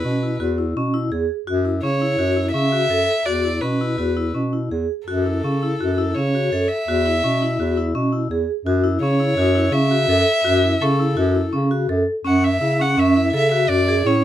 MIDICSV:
0, 0, Header, 1, 4, 480
1, 0, Start_track
1, 0, Key_signature, 3, "minor"
1, 0, Tempo, 359281
1, 1971, Time_signature, 5, 2, 24, 8
1, 19029, End_track
2, 0, Start_track
2, 0, Title_t, "Violin"
2, 0, Program_c, 0, 40
2, 0, Note_on_c, 0, 71, 78
2, 549, Note_off_c, 0, 71, 0
2, 2442, Note_on_c, 0, 73, 90
2, 3352, Note_off_c, 0, 73, 0
2, 3360, Note_on_c, 0, 76, 109
2, 4353, Note_on_c, 0, 74, 91
2, 4373, Note_off_c, 0, 76, 0
2, 4825, Note_on_c, 0, 71, 74
2, 4845, Note_off_c, 0, 74, 0
2, 5800, Note_off_c, 0, 71, 0
2, 6772, Note_on_c, 0, 69, 75
2, 8211, Note_on_c, 0, 73, 87
2, 8231, Note_off_c, 0, 69, 0
2, 8928, Note_on_c, 0, 76, 95
2, 8948, Note_off_c, 0, 73, 0
2, 10373, Note_off_c, 0, 76, 0
2, 12036, Note_on_c, 0, 73, 94
2, 12992, Note_on_c, 0, 76, 108
2, 13012, Note_off_c, 0, 73, 0
2, 14444, Note_on_c, 0, 69, 83
2, 14464, Note_off_c, 0, 76, 0
2, 15401, Note_off_c, 0, 69, 0
2, 16389, Note_on_c, 0, 78, 78
2, 16622, Note_on_c, 0, 76, 91
2, 16642, Note_off_c, 0, 78, 0
2, 17116, Note_on_c, 0, 78, 82
2, 17136, Note_off_c, 0, 76, 0
2, 17360, Note_on_c, 0, 76, 85
2, 17380, Note_off_c, 0, 78, 0
2, 17830, Note_off_c, 0, 76, 0
2, 17855, Note_on_c, 0, 76, 98
2, 18054, Note_off_c, 0, 76, 0
2, 18062, Note_on_c, 0, 76, 85
2, 18294, Note_on_c, 0, 74, 95
2, 18314, Note_off_c, 0, 76, 0
2, 18792, Note_on_c, 0, 73, 83
2, 18812, Note_off_c, 0, 74, 0
2, 19029, Note_off_c, 0, 73, 0
2, 19029, End_track
3, 0, Start_track
3, 0, Title_t, "Vibraphone"
3, 0, Program_c, 1, 11
3, 59, Note_on_c, 1, 61, 67
3, 187, Note_off_c, 1, 61, 0
3, 308, Note_on_c, 1, 64, 65
3, 433, Note_off_c, 1, 64, 0
3, 535, Note_on_c, 1, 66, 78
3, 663, Note_off_c, 1, 66, 0
3, 779, Note_on_c, 1, 64, 71
3, 906, Note_off_c, 1, 64, 0
3, 1027, Note_on_c, 1, 61, 77
3, 1152, Note_off_c, 1, 61, 0
3, 1252, Note_on_c, 1, 64, 73
3, 1380, Note_off_c, 1, 64, 0
3, 1492, Note_on_c, 1, 68, 74
3, 1748, Note_off_c, 1, 68, 0
3, 1969, Note_on_c, 1, 66, 94
3, 2098, Note_off_c, 1, 66, 0
3, 2205, Note_on_c, 1, 64, 67
3, 2335, Note_off_c, 1, 64, 0
3, 2453, Note_on_c, 1, 61, 70
3, 2581, Note_off_c, 1, 61, 0
3, 2693, Note_on_c, 1, 64, 73
3, 2820, Note_off_c, 1, 64, 0
3, 2921, Note_on_c, 1, 66, 81
3, 3052, Note_off_c, 1, 66, 0
3, 3160, Note_on_c, 1, 64, 72
3, 3291, Note_off_c, 1, 64, 0
3, 3397, Note_on_c, 1, 61, 79
3, 3529, Note_off_c, 1, 61, 0
3, 3636, Note_on_c, 1, 66, 72
3, 3768, Note_off_c, 1, 66, 0
3, 3878, Note_on_c, 1, 69, 71
3, 4137, Note_off_c, 1, 69, 0
3, 4355, Note_on_c, 1, 66, 91
3, 4487, Note_off_c, 1, 66, 0
3, 4605, Note_on_c, 1, 64, 66
3, 4735, Note_off_c, 1, 64, 0
3, 4842, Note_on_c, 1, 61, 69
3, 4973, Note_off_c, 1, 61, 0
3, 5093, Note_on_c, 1, 64, 71
3, 5221, Note_off_c, 1, 64, 0
3, 5322, Note_on_c, 1, 66, 76
3, 5453, Note_off_c, 1, 66, 0
3, 5567, Note_on_c, 1, 64, 69
3, 5698, Note_off_c, 1, 64, 0
3, 5808, Note_on_c, 1, 61, 71
3, 5939, Note_off_c, 1, 61, 0
3, 6053, Note_on_c, 1, 64, 65
3, 6183, Note_off_c, 1, 64, 0
3, 6299, Note_on_c, 1, 68, 63
3, 6559, Note_off_c, 1, 68, 0
3, 6784, Note_on_c, 1, 66, 82
3, 6914, Note_off_c, 1, 66, 0
3, 7026, Note_on_c, 1, 64, 62
3, 7156, Note_off_c, 1, 64, 0
3, 7272, Note_on_c, 1, 61, 65
3, 7400, Note_off_c, 1, 61, 0
3, 7516, Note_on_c, 1, 64, 69
3, 7643, Note_off_c, 1, 64, 0
3, 7755, Note_on_c, 1, 66, 80
3, 7882, Note_off_c, 1, 66, 0
3, 7990, Note_on_c, 1, 64, 71
3, 8119, Note_off_c, 1, 64, 0
3, 8230, Note_on_c, 1, 61, 74
3, 8358, Note_off_c, 1, 61, 0
3, 8477, Note_on_c, 1, 66, 70
3, 8604, Note_off_c, 1, 66, 0
3, 8717, Note_on_c, 1, 69, 73
3, 8972, Note_off_c, 1, 69, 0
3, 9194, Note_on_c, 1, 66, 86
3, 9321, Note_off_c, 1, 66, 0
3, 9430, Note_on_c, 1, 64, 70
3, 9558, Note_off_c, 1, 64, 0
3, 9671, Note_on_c, 1, 61, 69
3, 9798, Note_off_c, 1, 61, 0
3, 9918, Note_on_c, 1, 64, 73
3, 10043, Note_off_c, 1, 64, 0
3, 10151, Note_on_c, 1, 66, 74
3, 10277, Note_off_c, 1, 66, 0
3, 10386, Note_on_c, 1, 64, 73
3, 10513, Note_off_c, 1, 64, 0
3, 10621, Note_on_c, 1, 61, 77
3, 10749, Note_off_c, 1, 61, 0
3, 10855, Note_on_c, 1, 64, 69
3, 10984, Note_off_c, 1, 64, 0
3, 11102, Note_on_c, 1, 68, 70
3, 11357, Note_off_c, 1, 68, 0
3, 11575, Note_on_c, 1, 66, 101
3, 11703, Note_off_c, 1, 66, 0
3, 11807, Note_on_c, 1, 64, 73
3, 11936, Note_off_c, 1, 64, 0
3, 12058, Note_on_c, 1, 61, 80
3, 12183, Note_off_c, 1, 61, 0
3, 12290, Note_on_c, 1, 64, 67
3, 12416, Note_off_c, 1, 64, 0
3, 12526, Note_on_c, 1, 66, 81
3, 12652, Note_off_c, 1, 66, 0
3, 12763, Note_on_c, 1, 64, 78
3, 12891, Note_off_c, 1, 64, 0
3, 12993, Note_on_c, 1, 61, 86
3, 13123, Note_off_c, 1, 61, 0
3, 13239, Note_on_c, 1, 66, 74
3, 13367, Note_off_c, 1, 66, 0
3, 13483, Note_on_c, 1, 69, 78
3, 13739, Note_off_c, 1, 69, 0
3, 13957, Note_on_c, 1, 66, 98
3, 14086, Note_off_c, 1, 66, 0
3, 14217, Note_on_c, 1, 64, 77
3, 14340, Note_off_c, 1, 64, 0
3, 14456, Note_on_c, 1, 61, 81
3, 14579, Note_off_c, 1, 61, 0
3, 14691, Note_on_c, 1, 64, 72
3, 14815, Note_off_c, 1, 64, 0
3, 14921, Note_on_c, 1, 66, 91
3, 15048, Note_off_c, 1, 66, 0
3, 15158, Note_on_c, 1, 64, 69
3, 15287, Note_off_c, 1, 64, 0
3, 15399, Note_on_c, 1, 61, 81
3, 15529, Note_off_c, 1, 61, 0
3, 15644, Note_on_c, 1, 66, 69
3, 15774, Note_off_c, 1, 66, 0
3, 15888, Note_on_c, 1, 69, 82
3, 16148, Note_off_c, 1, 69, 0
3, 16362, Note_on_c, 1, 61, 92
3, 16624, Note_off_c, 1, 61, 0
3, 16851, Note_on_c, 1, 64, 70
3, 16982, Note_off_c, 1, 64, 0
3, 17097, Note_on_c, 1, 61, 73
3, 17227, Note_off_c, 1, 61, 0
3, 17337, Note_on_c, 1, 61, 88
3, 17467, Note_off_c, 1, 61, 0
3, 17583, Note_on_c, 1, 64, 72
3, 17711, Note_off_c, 1, 64, 0
3, 17816, Note_on_c, 1, 69, 83
3, 17945, Note_off_c, 1, 69, 0
3, 18056, Note_on_c, 1, 66, 78
3, 18186, Note_off_c, 1, 66, 0
3, 18300, Note_on_c, 1, 66, 79
3, 18428, Note_off_c, 1, 66, 0
3, 18548, Note_on_c, 1, 68, 76
3, 18675, Note_off_c, 1, 68, 0
3, 18792, Note_on_c, 1, 61, 90
3, 19029, Note_off_c, 1, 61, 0
3, 19029, End_track
4, 0, Start_track
4, 0, Title_t, "Bass clarinet"
4, 0, Program_c, 2, 71
4, 58, Note_on_c, 2, 47, 87
4, 478, Note_off_c, 2, 47, 0
4, 531, Note_on_c, 2, 40, 93
4, 954, Note_off_c, 2, 40, 0
4, 1015, Note_on_c, 2, 47, 79
4, 1435, Note_off_c, 2, 47, 0
4, 1489, Note_on_c, 2, 40, 84
4, 1700, Note_off_c, 2, 40, 0
4, 1961, Note_on_c, 2, 42, 97
4, 2386, Note_off_c, 2, 42, 0
4, 2447, Note_on_c, 2, 49, 85
4, 2869, Note_off_c, 2, 49, 0
4, 2908, Note_on_c, 2, 42, 94
4, 3339, Note_off_c, 2, 42, 0
4, 3391, Note_on_c, 2, 49, 90
4, 3821, Note_off_c, 2, 49, 0
4, 3866, Note_on_c, 2, 42, 76
4, 4086, Note_off_c, 2, 42, 0
4, 4336, Note_on_c, 2, 40, 85
4, 4772, Note_off_c, 2, 40, 0
4, 4834, Note_on_c, 2, 47, 85
4, 5264, Note_off_c, 2, 47, 0
4, 5318, Note_on_c, 2, 40, 88
4, 5747, Note_off_c, 2, 40, 0
4, 5805, Note_on_c, 2, 47, 77
4, 6233, Note_off_c, 2, 47, 0
4, 6288, Note_on_c, 2, 40, 82
4, 6504, Note_off_c, 2, 40, 0
4, 6768, Note_on_c, 2, 42, 93
4, 7201, Note_off_c, 2, 42, 0
4, 7263, Note_on_c, 2, 49, 83
4, 7687, Note_off_c, 2, 49, 0
4, 7754, Note_on_c, 2, 42, 90
4, 8173, Note_off_c, 2, 42, 0
4, 8228, Note_on_c, 2, 49, 79
4, 8651, Note_off_c, 2, 49, 0
4, 8710, Note_on_c, 2, 42, 81
4, 8920, Note_off_c, 2, 42, 0
4, 9187, Note_on_c, 2, 40, 93
4, 9609, Note_off_c, 2, 40, 0
4, 9673, Note_on_c, 2, 47, 82
4, 10090, Note_off_c, 2, 47, 0
4, 10147, Note_on_c, 2, 40, 91
4, 10564, Note_off_c, 2, 40, 0
4, 10615, Note_on_c, 2, 47, 83
4, 11036, Note_off_c, 2, 47, 0
4, 11080, Note_on_c, 2, 40, 83
4, 11298, Note_off_c, 2, 40, 0
4, 11556, Note_on_c, 2, 42, 104
4, 11983, Note_off_c, 2, 42, 0
4, 12028, Note_on_c, 2, 49, 91
4, 12454, Note_off_c, 2, 49, 0
4, 12510, Note_on_c, 2, 42, 103
4, 12934, Note_off_c, 2, 42, 0
4, 12976, Note_on_c, 2, 49, 88
4, 13407, Note_off_c, 2, 49, 0
4, 13470, Note_on_c, 2, 42, 97
4, 13684, Note_off_c, 2, 42, 0
4, 13949, Note_on_c, 2, 42, 99
4, 14374, Note_off_c, 2, 42, 0
4, 14440, Note_on_c, 2, 49, 90
4, 14859, Note_off_c, 2, 49, 0
4, 14917, Note_on_c, 2, 42, 103
4, 15339, Note_off_c, 2, 42, 0
4, 15407, Note_on_c, 2, 49, 86
4, 15832, Note_off_c, 2, 49, 0
4, 15884, Note_on_c, 2, 42, 93
4, 16099, Note_off_c, 2, 42, 0
4, 16362, Note_on_c, 2, 42, 94
4, 16791, Note_off_c, 2, 42, 0
4, 16845, Note_on_c, 2, 49, 84
4, 17274, Note_off_c, 2, 49, 0
4, 17331, Note_on_c, 2, 42, 93
4, 17757, Note_off_c, 2, 42, 0
4, 17811, Note_on_c, 2, 49, 84
4, 18235, Note_off_c, 2, 49, 0
4, 18285, Note_on_c, 2, 42, 98
4, 18714, Note_off_c, 2, 42, 0
4, 18756, Note_on_c, 2, 45, 105
4, 19029, Note_off_c, 2, 45, 0
4, 19029, End_track
0, 0, End_of_file